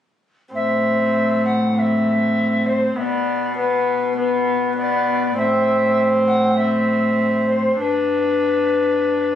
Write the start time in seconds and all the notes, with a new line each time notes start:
0.54 A2 C4 E5
1.44 F#5
1.75 C4 E5 F#5
2.65 C5
2.96 B2 B3 E5
3.00 D5
3.56 B3 B4
4.16 B3 B4
4.76 B3 D5
5.36 A2 C4 E5
6.27 F#5
6.56 C4 E5
7.47 C5
7.79 G2 D4 B4